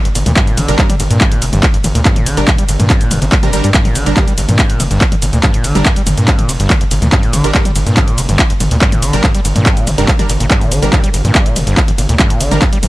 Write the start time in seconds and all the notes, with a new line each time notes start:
0.05 G2, closed hi-hat
0.15 G1 A#2, open hi-hat, ride, shaker
0.26 D2 A#2, closed hi-hat, mid tom, shaker
0.36 G2, kick, clap, closed hi-hat, shaker
0.47 A#2, open hi-hat
0.57 G1 D3, open hi-hat, mid tom, ride, shaker
0.68 G1 G#2 G3 D4 A#4, closed hi-hat, shaker
0.79 G2, kick, clap, closed hi-hat, shaker
0.89 G3, closed hi-hat, mid tom, shaker
1.00 G1 G2, open hi-hat, ride, shaker
1.11 G2 A#2, closed hi-hat, shaker
1.21 G2, kick, clap, closed hi-hat, mid tom, shaker
1.32 A#2, closed hi-hat
1.42 F1 D3, open hi-hat, ride, shaker
1.53 G1 G2, closed hi-hat, mid tom, shaker
1.63 G3, kick, clap, closed hi-hat, shaker
1.74 G2, closed hi-hat
1.84 G1 A#2, open hi-hat, mid tom, ride, shaker
1.95 D2 A#2, closed hi-hat, shaker
2.05 G2, kick, clap, closed hi-hat, shaker
2.16 A#2, closed hi-hat, mid tom
2.26 G1 D3, open hi-hat, ride, shaker
2.37 G1 G#2 G3 D4 A#4, closed hi-hat, shaker
2.48 G2, kick, clap, closed hi-hat, mid tom, shaker
2.58 G3, closed hi-hat, shaker
2.69 G1 G2, open hi-hat, ride, shaker
2.80 G2 A#2, closed hi-hat, mid tom, shaker
2.90 G2, kick, clap, closed hi-hat, shaker
3.01 A#2, closed hi-hat, shaker
3.11 F1 G2, open hi-hat, mid tom, ride, shaker
3.22 G1 C3, closed hi-hat, shaker
3.32 G1, kick, clap, closed hi-hat, shaker
3.43 C3 G3 D4 A#4, closed hi-hat, mid tom
3.53 G1 G3 D4 A#4, open hi-hat, ride, shaker
3.64 G2 G3, closed hi-hat, shaker
3.74 G2, kick, clap, closed hi-hat, shaker
3.85 A#2, open hi-hat, mid tom
3.95 G1 D3, open hi-hat, ride, shaker
4.06 G1 G#2 G3 D4 A#4, closed hi-hat, shaker
4.17 G2, kick, clap, closed hi-hat, mid tom, shaker
4.28 G3, closed hi-hat, shaker
4.38 G1 G2, open hi-hat, ride, shaker
4.49 G2 A#2, closed hi-hat, mid tom, shaker
4.59 G2, kick, clap, closed hi-hat, shaker
4.70 A#2, closed hi-hat
4.80 F1 D3, open hi-hat, mid tom, ride, shaker
4.91 G1 G2, closed hi-hat, shaker
5.01 G3, kick, clap, closed hi-hat, shaker
5.12 G2, closed hi-hat, mid tom
5.22 G1 A#2, open hi-hat, ride, shaker
5.33 D2 A#2, closed hi-hat, shaker
5.43 G2, kick, clap, closed hi-hat, mid tom, shaker
5.54 A#2, closed hi-hat
5.64 G1 D3, open hi-hat, ride, shaker
5.75 G1 G#2 G3 D4 A#4, closed hi-hat, mid tom, shaker
5.86 G2, kick, clap, closed hi-hat, shaker
5.96 G3, closed hi-hat, shaker
6.07 G1 G2, open hi-hat, mid tom, ride, shaker
6.18 G2 A#2, closed hi-hat, shaker
6.28 G2, kick, clap, closed hi-hat, shaker
6.39 A#2, closed hi-hat, mid tom
6.49 F1 D3, open hi-hat, ride, shaker
6.60 G1 G2, closed hi-hat, shaker
6.70 G3, kick, clap, closed hi-hat, mid tom, shaker
6.81 G2, closed hi-hat
6.91 G1 A#2, open hi-hat, ride, shaker
7.02 D2 A#2, closed hi-hat, mid tom, shaker
7.12 G2, kick, clap, closed hi-hat, shaker
7.23 A#2, open hi-hat
7.33 G1 D3, open hi-hat, mid tom, ride, shaker
7.44 G1 G#2 G3 D4 A#4, closed hi-hat, shaker
7.54 G2, kick, clap, closed hi-hat, shaker
7.65 G3, closed hi-hat, mid tom, shaker
7.76 G1 G2, open hi-hat, ride, shaker
7.86 G2 A#2, closed hi-hat, shaker
7.97 G2, kick, clap, closed hi-hat, mid tom, shaker
8.08 A#2, closed hi-hat
8.18 F1 D3, open hi-hat, ride, shaker
8.29 G1 G2, closed hi-hat, mid tom, shaker
8.39 G3, kick, clap, closed hi-hat, shaker
8.50 G2, closed hi-hat
8.60 G1 A#2, open hi-hat, mid tom, ride, shaker
8.71 D2 A#2, closed hi-hat, shaker
8.81 G2, kick, clap, closed hi-hat, shaker
8.92 A#2, closed hi-hat, mid tom, shaker
9.02 G1 D3, open hi-hat, ride, shaker
9.13 G1 G#2 G3 D4 A#4, closed hi-hat, shaker
9.24 G2, kick, clap, closed hi-hat, mid tom, shaker
9.35 G3, closed hi-hat, shaker
9.45 G1 G2, open hi-hat, ride, shaker
9.56 G2 A#2, closed hi-hat, mid tom, shaker
9.66 G2, kick, clap, closed hi-hat, shaker
9.77 A#2, open hi-hat, shaker
9.87 G1 D3, open hi-hat, mid tom, ride, shaker
9.98 F1 G2 G3 D4 A#4, closed hi-hat, shaker
10.08 G3, kick, clap, closed hi-hat, shaker
10.19 G2 G3 D4 A#4, closed hi-hat, mid tom, shaker
10.29 G1 A#2, open hi-hat, ride, shaker
10.40 G1 A#2, closed hi-hat, shaker
10.51 G2, kick, clap, closed hi-hat, shaker
10.61 A#2, open hi-hat, mid tom
10.71 G1 D3, open hi-hat, ride, shaker
10.82 G1 G#2 G3 D4 A#4, closed hi-hat, shaker
10.93 G2, kick, clap, closed hi-hat, mid tom, shaker
11.04 G3, closed hi-hat, shaker
11.14 G1 G2, open hi-hat, ride, shaker
11.25 G2 A#2, closed hi-hat, mid tom, shaker
11.35 G2, kick, clap, closed hi-hat, shaker
11.46 A#2, closed hi-hat
11.56 F1 D3, open hi-hat, mid tom, ride, shaker
11.67 G1 G2, closed hi-hat, shaker
11.77 G3, kick, clap, closed hi-hat, shaker
11.88 G2, closed hi-hat, mid tom
11.98 G1 A#2, open hi-hat, ride, shaker
12.09 D2 A#2, closed hi-hat, shaker
12.19 G2, kick, clap, closed hi-hat, mid tom, shaker
12.30 A#2, closed hi-hat
12.41 G1 D3, open hi-hat, ride, shaker
12.51 G1 G#2 G3 D4 A#4, closed hi-hat, mid tom, shaker
12.62 G2, kick, clap, closed hi-hat, shaker
12.73 G3, closed hi-hat, shaker
12.83 G1 G2, open hi-hat, mid tom, ride, shaker